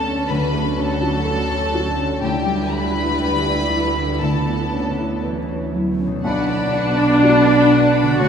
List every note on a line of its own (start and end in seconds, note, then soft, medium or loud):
0.00 0.26 D2 medium
0.00 2.18 D2 medium
0.00 0.28 D3 medium
0.00 2.18 D3 medium
0.00 1.88 A3 soft
0.00 0.26 B3 medium
0.00 0.32 B3 soft
0.00 0.34 B3 medium
0.00 0.06 C#4 soft
0.00 0.61 C#4 soft
0.00 2.19 C#4 medium
0.00 0.26 A4 medium
0.00 0.32 A4 soft
0.00 1.24 A4 medium
0.00 0.32 B4 medium
0.00 0.32 C#5 soft
0.00 0.30 A5 loud
0.06 0.30 C#4 soft
0.29 2.18 D2 medium
0.29 2.21 D3 medium
0.29 2.18 F#3 medium
0.29 0.77 B4 medium
0.29 0.78 B5 medium
0.53 0.92 A3 soft
0.62 1.56 C#4 soft
0.77 1.16 C#4 medium
0.77 2.22 A4 medium
0.77 2.22 A5 medium
0.94 2.26 F#4 medium
1.01 1.40 F#4 medium
1.25 1.64 A4 medium
1.25 2.26 A4 medium
1.50 1.88 C#5 medium
1.58 2.26 C#4 medium
1.74 2.13 F#4 medium
1.89 2.26 A3 medium
1.98 2.22 C#4 medium
2.21 4.17 D2 medium
2.21 6.00 D2 medium
2.21 5.09 D3 medium
2.21 4.20 D3 medium
2.21 4.17 G3 medium
2.21 6.00 E4 medium
2.21 2.70 G4 medium
2.21 2.70 G5 medium
2.46 2.86 G3 soft
2.54 3.53 D4 medium
2.70 3.10 D4 soft
2.70 4.20 B4 medium
2.70 4.21 B5 loud
2.87 5.24 E4 medium
2.96 3.36 E4 medium
3.20 3.60 G4 soft
3.20 4.25 G4 soft
3.45 3.85 D5 medium
3.54 4.25 D4 soft
3.70 4.11 E4 soft
3.88 4.26 G3 soft
3.96 4.21 D4 soft
4.21 6.20 D2 medium
4.21 6.28 D3 medium
4.21 6.00 B3 medium
4.21 5.24 A4 medium
4.21 5.24 A5 medium
4.47 4.88 B3 soft
4.56 5.57 B3 soft
4.72 5.13 C#4 soft
4.91 6.28 C#4 soft
4.98 5.39 E4 soft
5.23 5.71 E3 medium
5.23 6.29 E4 soft
5.23 5.64 B4 soft
5.48 5.89 C#5 soft
5.58 8.24 B3 soft
5.74 6.24 F#3 medium
5.74 6.14 E4 soft
5.92 6.10 A3 soft
6.00 6.24 C#4 soft
6.07 8.15 B2 medium
6.11 8.06 A3 medium
6.16 8.29 D4 soft
6.20 8.16 B1 medium
6.20 8.29 A3 medium
6.20 8.15 D4 loud
6.20 8.15 F#4 medium
6.20 8.29 F#5 medium
6.20 8.29 A5 medium
6.25 8.16 B2 medium
6.25 8.16 D4 loud
6.25 6.47 B4 medium
6.25 8.22 D5 medium
6.25 6.47 F#5 medium
6.25 6.47 B5 medium
6.49 6.74 D5 medium
6.49 6.73 A5 medium
6.49 6.74 B5 medium
6.74 6.98 B4 medium
6.74 6.98 F#5 medium
6.74 6.98 B5 medium
6.99 7.23 D5 medium
6.99 7.23 A5 medium
6.99 7.23 B5 medium
7.22 8.16 D4 medium
7.22 8.16 F#4 medium
7.22 7.45 B4 medium
7.22 7.45 F#5 medium
7.22 7.45 B5 medium
7.47 7.72 D5 medium
7.47 7.72 A5 medium
7.47 7.72 B5 medium
7.72 7.96 B4 medium
7.72 7.96 F#5 medium
7.72 7.96 B5 medium
7.95 8.19 D5 medium
7.95 8.20 A5 medium
7.95 8.20 B5 medium
8.02 8.29 D3 medium
8.07 8.29 A3 medium
8.11 8.29 C#4 medium
8.16 8.29 D2 medium
8.16 8.29 F#4 soft
8.16 8.29 C#5 medium
8.16 8.29 F#5 medium
8.20 8.29 D3 medium
8.20 8.29 F#4 loud
8.20 8.29 C#5 medium
8.20 8.29 D5 medium
8.20 8.29 C#6 medium